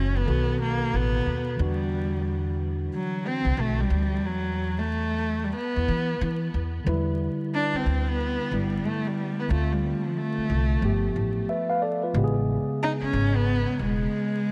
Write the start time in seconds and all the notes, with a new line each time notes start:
Already playing: F#1 E3 F#3 C#4 F#4
0.16 B3
0.25 B1 B2 D#3 A4
0.30 F#4
0.62 A#3
0.93 A1 B3
1.26 D#2
1.57 E2 D3 E3 D4
1.61 G3 F#4
2.94 F#3
3.27 C4
3.45 C2
3.57 B1 A3
3.81 G3
3.90 D2
4.23 E2 F#3
4.79 A3
5.44 G3
5.56 B3
5.76 E2
5.88 E3
6.21 E3
6.54 E2
6.84 E2 D3 F#3 B4
6.89 G3 E4
7.55 D4
7.74 C4, muted upright bass stroke
7.86 D2
8.08 B3
8.51 G1 D3 F#3 G3 B3 E4
8.58 G3
8.86 A3
9.07 G3
9.39 B3
9.48 D2 D3 A3 C4
9.52 A3 F4
9.72 G3
10.05 F3
10.17 A3
10.37 muted upright bass stroke
10.50 C2
10.80 G1 F3 A3 B3
10.85 G4
11.16 A1
11.49 B4 E5
11.70 B4 F5
11.82 A4 D5
12.03 F4 B4
12.13 A1 C#3 G#3 B3
12.18 G4
12.24 G#4
12.83 D#4
13.01 C#4, muted upright bass stroke
13.13 G#1
13.36 B3
13.79 E1 G#3